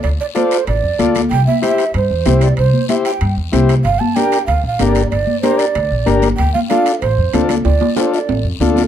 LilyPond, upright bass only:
\new Staff \with { instrumentName = "Upright bass" } { \clef bass \time 4/4 \key d \minor \tempo 4 = 189 d,8 r4. a,,8 f,8 d,4 | c,8 r4. g,8 e,8 c,4 | c,8 r4. g,8 e,8 c,4 | g,,8 r4. d,8 bes,,8 g,,4 |
g,,8 r4. d,8 bes,,8 g,,4 | d,8 r4. a,,8 f,8 d,4 | d,8 r4. a,,8 f,8 d,4 | }